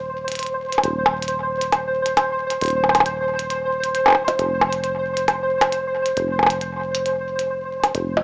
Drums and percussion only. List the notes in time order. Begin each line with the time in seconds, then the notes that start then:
0.28 closed hi-hat
0.32 closed hi-hat
0.35 closed hi-hat
0.39 closed hi-hat
0.43 closed hi-hat
0.47 closed hi-hat
0.72 closed hi-hat
0.78 percussion blips
0.84 closed hi-hat
1.06 percussion blips
1.22 closed hi-hat
1.28 closed hi-hat
1.61 closed hi-hat
1.72 closed hi-hat, percussion blips
2.06 closed hi-hat
2.17 closed hi-hat, percussion blips
2.50 closed hi-hat
2.61 closed hi-hat
2.64 closed hi-hat
2.66 closed hi-hat
2.68 closed hi-hat
2.70 closed hi-hat
2.84 percussion blips
2.89 percussion blips
2.95 closed hi-hat, percussion blips
3.00 percussion blips
3.06 closed hi-hat
3.39 closed hi-hat
3.50 closed hi-hat
3.84 closed hi-hat
3.95 closed hi-hat
4.06 percussion blips
4.08 percussion blips
4.10 percussion blips
4.12 percussion blips
4.15 percussion blips
4.28 closed hi-hat, percussion blips
4.39 closed hi-hat
4.61 percussion blips
4.73 closed hi-hat
4.84 closed hi-hat
5.17 closed hi-hat
5.28 closed hi-hat, percussion blips
5.61 closed hi-hat, percussion blips
5.72 closed hi-hat
6.06 closed hi-hat
6.17 closed hi-hat
6.39 percussion blips
6.43 percussion blips
6.47 closed hi-hat, percussion blips
6.61 closed hi-hat
6.95 closed hi-hat
7.06 closed hi-hat
7.39 closed hi-hat
7.84 closed hi-hat, percussion blips
7.95 closed hi-hat
8.17 percussion blips